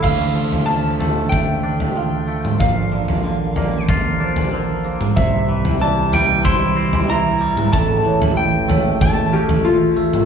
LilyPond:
<<
  \new Staff \with { instrumentName = "Electric slide guitar" } { \time 4/4 \key d \minor \tempo 4 = 94 f''4 a''4 g''2 | f''2 r2 | e''4 a''8 g''8 c'''4 bes''4 | a''4 g''4 a''8 g'8 f'4 | }
  \new Staff \with { instrumentName = "Felt piano" } { \time 4/4 \key d \minor e'''4 f''4 e''4 f''4 | bes'8 d''4 d''4 c''4 c''8 | c''4 d''4 c''4 e''4 | a'8 cis''4 cis''4 a'4 a'8 | }
  \new Staff \with { instrumentName = "Harmonium" } { \time 4/4 \key d \minor <a f' a'>1 | <bes f' bes'>1 | <g e' g'>1 | <a a' e''>1 | }
  \new Staff \with { instrumentName = "Harmonium" } { \clef bass \time 4/4 \key d \minor <d f>1~ | <d f>1 | <c e>1 | cis1 | }
  \new Staff \with { instrumentName = "Clean electric guitar" } { \clef bass \time 4/4 \key d \minor d8 f8 f8 a4 d'8 f8 a8 | bes,8 d8 d8 bes8 f'8 d'8 d8 bes8 | c8 e8 e8 g8 e'8 c'8 e8 g8 | a,8 e4 a4 cis'4 a8 | }
  \new Staff \with { instrumentName = "Fingered electric bass" } { \clef bass \time 4/4 \key d \minor d,1 | bes,,1 | c,1 | a,,1 | }
  \new DrumStaff \with { instrumentName = "Drums" } \drummode { \time 4/4 <cymc bd tomfh>8. tomfh16 r8 tomfh8 <bd tomfh>8. tomfh16 r8. toml16 | <bd tomfh>8. tomfh16 r8 tomfh8 <bd tomfh>8. tomfh16 r8. toml16 | <bd tomfh>8. tomfh16 r8 tomfh8 <bd tomfh>8. tomfh16 r8. toml16 | <bd tomfh>8. tomfh16 r8 tomfh8 <bd tomfh>8. tomfh16 r8. toml16 | }
>>